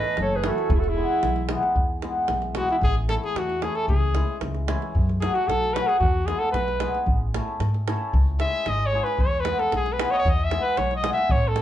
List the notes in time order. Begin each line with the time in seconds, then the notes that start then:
Already playing: E3 A3 C#4 E4 B4 D#5
0.04 davul high
0.17 F#1, davul high
0.21 A4 C#5
0.35 G#4 B4
0.44 E3 A3 C#4 E4, davul high
0.48 F#4 A4
0.58 davul high
0.69 E1 E4, davul low
0.74 G#4
0.79 F#4 A4
0.84 davul high
0.88 E4 G#4
0.96 E3 G#3 B3 E4
1.23 B1, davul high
1.36 davul high
1.49 E3 G#3 B3 E4, davul high
1.63 davul high
1.75 E2, davul low
2.02 E3 G#3 B3 E4, davul high
2.28 B1, davul high
2.42 davul high
2.55 E3 G#3 B3 E4 F#4, davul high
2.69 E4, davul high
2.81 A1 G#4, davul low
3.09 E3 A3 C#4 E4 A4, davul high
3.25 G#4
3.35 E2 F#4, davul high
3.50 davul high
3.62 E3 A3 C#4 E4 G#4, davul high
3.75 A4, davul high
3.88 C#2 G#4, davul low
4.15 E3 G#3 C#4 E4, davul high
4.41 C#2, davul high
4.55 davul high
4.68 E3 G#3 C#4 E4, davul high
4.82 davul high
4.95 F#2, davul low
5.09 davul high
5.21 F#3 A3 C#4 F#4 G#4, davul high
5.35 F#4, davul high
5.48 B1 A4, davul high
5.64 davul high
5.73 F#3 A3 C#4 F#4 B4, davul high
5.87 G#4, davul high
5.99 E2 F#4, davul low
6.26 G#3 B3 G#4, davul high
6.30 E4 G#4
6.39 A4
6.52 B1 B4, davul high
6.68 davul high
6.80 G#3 B3 E4 G#4, davul high
6.95 davul high
7.06 A1, davul low
7.34 A3 C#4 E4 A4, davul high
7.60 G#2, davul high
7.74 davul high
7.87 A3 C#4 E4 A4, davul high
8.13 C#2, davul low
8.40 G#3 C#4 E4 G#4 E5, davul high
8.66 G#1 D#5, davul high
8.79 davul high
8.86 C#5
8.92 G#3 C#4 E4 G#4
9.04 B4, davul high
9.18 E2 C#5, davul low
9.40 B4
9.45 G#3 B3 E4 G#4, davul high
9.59 A4, davul high
9.72 B1 G#4, davul high
9.86 davul high
9.93 B4
9.98 G#3 B3 E4 G#4, davul high
10.11 C#5 D#5, davul high
10.18 C#5
10.25 E2 D#5, davul low
10.44 E5
10.50 G#3 B3 E4 G#4, davul high
10.61 B4
10.77 B1 C#5, davul high
10.91 davul high
10.96 D#5
11.03 G#3 B3 E4 G#4, davul high
11.13 E5
11.18 davul high
11.29 A1 C#5, davul low
11.48 A4
11.55 A3 C#4 E4 A4, davul high